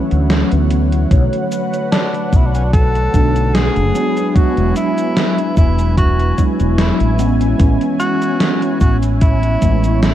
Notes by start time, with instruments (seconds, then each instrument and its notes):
Already playing: tine electric piano E3 F#3 A3 C#4, analog synth pad E4 C#5 F#5
0.11 fretless electric bass D2, closed hi-hat
0.30 snare, closed hi-hat
0.51 fretless electric bass D2, tine electric piano E3 F#3 A3 B3, closed hi-hat
0.71 closed hi-hat
0.92 closed hi-hat
1.09 fretless electric bass B1, tine electric piano D3 F#3 A3 C#5, analog synth pad F#4 B4 F#5, kick, closed hi-hat, cabasa
1.33 closed hi-hat
1.52 closed hi-hat, cabasa
1.74 closed hi-hat, cabasa
1.92 tenor saxophone D4, snare, closed hi-hat, cabasa
2.15 closed hi-hat
2.33 fretless electric bass B1, tenor saxophone E4, kick, cabasa
2.46 tenor saxophone D4
2.55 tenor saxophone C#4, closed hi-hat, cabasa
2.64 tenor saxophone D4
2.73 tenor saxophone A4, kick, closed hi-hat, cabasa
2.95 closed hi-hat
3.13 fretless electric bass B1, tine electric piano D3 F#3 A3 D4, kick, closed hi-hat, cabasa
3.36 closed hi-hat, cabasa
3.54 tenor saxophone G#4, snare, closed hi-hat, cabasa
3.76 fretless electric bass F#1, closed hi-hat
3.94 tine electric piano F#3 G#3 B3 D4, analog synth pad E4 B4 G#5, closed hi-hat, cabasa
4.17 closed hi-hat, cabasa
4.29 tenor saxophone G#4
4.34 tine electric piano F#3 G#3 B3 D4, tenor saxophone F#4, muted fretless electric bass stroke, kick, closed hi-hat, cabasa
4.57 fretless electric bass E1, closed hi-hat
4.76 tenor saxophone E4, closed hi-hat, cabasa
4.98 closed hi-hat, cabasa
5.17 snare, closed hi-hat, cabasa
5.38 closed hi-hat
5.57 fretless electric bass E1, tenor saxophone E4, kick, cabasa
5.79 closed hi-hat, cabasa
5.98 tenor saxophone F#4, kick, closed hi-hat, cabasa
6.19 closed hi-hat
6.37 tine electric piano F#3 G#3 B3 E4, kick, closed hi-hat, cabasa
6.60 fretless electric bass E1, closed hi-hat, cabasa
6.78 tenor saxophone E4, snare, closed hi-hat, cabasa
7.00 fretless electric bass A1, closed hi-hat
7.18 tine electric piano E3 G#3 B3 C#4, analog synth pad C#5, closed hi-hat, cabasa
7.41 closed hi-hat, cabasa
7.58 fretless electric bass A1, tine electric piano E3 G#3 B3 C#4, kick, closed hi-hat, cabasa
7.81 closed hi-hat
7.99 tenor saxophone F#4, closed hi-hat, cabasa
8.22 closed hi-hat, cabasa
8.40 snare, closed hi-hat, cabasa
8.62 closed hi-hat
8.81 fretless electric bass A1, tenor saxophone F#4, kick, cabasa
9.03 closed hi-hat, cabasa
9.21 tenor saxophone E4, kick, closed hi-hat, cabasa
9.43 closed hi-hat
9.61 fretless electric bass A1, tine electric piano E3 G#3 B3 E4, kick, closed hi-hat, cabasa
9.84 closed hi-hat, cabasa
10.03 tenor saxophone E4, snare, closed hi-hat, cabasa